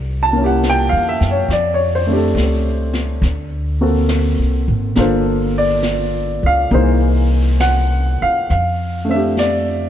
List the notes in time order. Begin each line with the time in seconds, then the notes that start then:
Already playing: C2
0.23 A5
0.33 A#3 C#4
0.40 E4 G4
0.46 F#5
0.64 snare, hi-hat pedal
0.70 G5
0.89 E2 F5
1.09 E5
1.21 F#2, snare
1.31 C#5
1.48 F2, brush sweep, snare
1.52 D5
1.74 C#5
1.95 C5
2.07 A3 C4 D4
2.12 G4
2.17 A4
2.35 C#2, snare, hi-hat pedal
2.93 snare
3.22 D2, brush sweep, snare
3.81 A#3 C4 F#4 A4
4.09 snare, hi-hat pedal
4.38 C2
4.68 G#1
4.96 G1 A#3 D4 F4 A4, brush sweep, snare
5.01 C5
5.58 D5
5.83 snare, hi-hat pedal
6.43 C#2 F5
6.70 C2 E3 A#3 D#4 G#4, brush sweep
6.74 C5
7.60 F#5, snare, hi-hat pedal
8.22 F5, muted upright bass stroke
8.50 F2 F5, brush sweep, snare
9.05 A3
9.09 C4 D4 E5
9.16 G4
9.37 D5, snare, hi-hat pedal